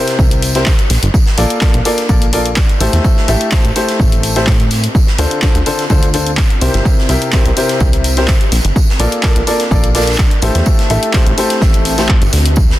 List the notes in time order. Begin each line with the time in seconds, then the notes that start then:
Already playing: C3 E4 G4 A#4 C5 E5 A#5
0.08 snare, closed hi-hat
0.19 C2, kick, tambourine
0.31 closed hi-hat
0.42 open hi-hat, tambourine
0.54 C3 E4 G4 A#4 C5, snare, closed hi-hat
0.66 kick, snare, clap, tambourine
0.79 closed hi-hat
0.90 A#1, snare, open hi-hat, tambourine
1.03 G1, closed hi-hat
1.14 D4, kick, tambourine
1.26 snare
1.32 A#4
1.37 A#1 A#3 F4 A4 A#4 D5, open hi-hat, tambourine
1.50 F5, closed hi-hat
1.61 A#3 F4 A4 A#4, kick, snare, clap, tambourine
1.74 A#1, closed hi-hat
1.85 A#3 F4 A4 A#4 D5, open hi-hat, tambourine
1.89 A5
1.98 snare, closed hi-hat
2.09 A#1 A#3 F4 A4 A#4 D5, kick, tambourine
2.22 closed hi-hat
2.33 A#3 F4 A4 A#4 D5, open hi-hat, tambourine
2.46 closed hi-hat
2.56 kick, snare, clap, tambourine
2.69 closed hi-hat
2.81 A1 A3 C4 E4 G4 A4 C5, open hi-hat, tambourine
2.93 E2, snare, closed hi-hat
3.00 G4
3.04 kick, tambourine
3.17 snare
3.28 A1 A3 E4 G4 A4 E5, open hi-hat, tambourine
3.41 closed hi-hat
3.51 C5, kick, snare, clap, tambourine
3.65 A1, closed hi-hat
3.76 A3 E4 G4 A4 C5, open hi-hat, tambourine
3.88 snare, closed hi-hat
4.00 A1, kick, tambourine
4.12 closed hi-hat
4.23 open hi-hat, tambourine
4.36 A3 E4 G4 A4 C5, snare, closed hi-hat
4.47 A2, kick, snare, clap, tambourine
4.60 closed hi-hat
4.71 snare, open hi-hat, tambourine
4.84 closed hi-hat
4.95 kick, tambourine
5.03 F4
5.07 snare
5.18 D2 D3 D4 F4 A4 C5, open hi-hat, tambourine
5.31 closed hi-hat
5.37 D5
5.42 D3 D4 F4 A4 C5, kick, snare, clap, tambourine
5.55 D2, closed hi-hat
5.66 D3 D4 F4 A4 C5, open hi-hat, tambourine
5.79 snare, closed hi-hat
5.90 D2 D3 D4 F4 A4 C5, kick, tambourine
6.03 closed hi-hat
6.14 D3 D4 F4 A4 C5, open hi-hat, tambourine
6.26 closed hi-hat
6.37 kick, snare, clap, tambourine
6.50 closed hi-hat
6.61 C2 C3 E4 G4 A#4 C5, open hi-hat, tambourine
6.72 G1 E5, snare, closed hi-hat
6.77 A#5
6.85 kick, tambourine
6.95 G4, snare
7.09 C2 C3 E4 G4 A#4 E5, open hi-hat, tambourine
7.22 closed hi-hat
7.32 C3 E4 G4 A#4 C5, kick, snare, clap, tambourine
7.46 C2, closed hi-hat
7.57 C3 E4 G4 A#4 C5, open hi-hat, tambourine
7.69 snare, closed hi-hat
7.80 C2, kick, tambourine
7.93 closed hi-hat
8.04 open hi-hat, tambourine
8.17 C3 E4 G4 A#4 C5, snare, closed hi-hat
8.27 kick, snare, clap, tambourine
8.41 closed hi-hat
8.52 A#1, snare, open hi-hat, tambourine
8.65 G1, closed hi-hat
8.76 D4, kick, tambourine
8.89 snare
8.98 A#1 A#3 F4 A4 A#4 D5 A5, open hi-hat, tambourine
9.09 A#4, closed hi-hat
9.13 F5
9.23 A#3 F4 A4 A#4 D5, kick, snare, clap, tambourine
9.36 A#1, closed hi-hat
9.47 A#3 F4 A4 A#4 D5, open hi-hat, tambourine
9.60 snare, closed hi-hat
9.71 A#1 A#3 F4 A4 A#4 D5, kick, tambourine
9.84 closed hi-hat
9.95 A#3 F4 A4 A#4 D5, snare, open hi-hat, tambourine
10.01 snare, tambourine
10.07 snare, closed hi-hat, tambourine
10.13 snare, tambourine
10.18 kick, snare, clap
10.31 closed hi-hat
10.42 A1 A3 C4 E4 G4 A4 C5, open hi-hat, tambourine
10.49 G4
10.55 E2, snare, closed hi-hat
10.65 E5, kick, tambourine
10.79 snare, closed hi-hat
10.90 A1 A3 E4 G4 A4 E5, open hi-hat, tambourine
11.03 closed hi-hat
11.13 A3 E4 G4 A4 C5, kick, snare, clap, tambourine
11.27 A1, closed hi-hat
11.38 A3 E4 G4 A4 C5, open hi-hat, tambourine
11.50 snare, closed hi-hat
11.61 A1, kick, snare, tambourine
11.74 closed hi-hat
11.85 open hi-hat, tambourine
11.98 A3 E4 G4 A4 C5, snare, closed hi-hat, tambourine
12.09 kick, clap
12.21 G1, closed hi-hat, tambourine
12.33 D2, snare, open hi-hat, tambourine
12.46 closed hi-hat
12.56 kick, tambourine
12.70 snare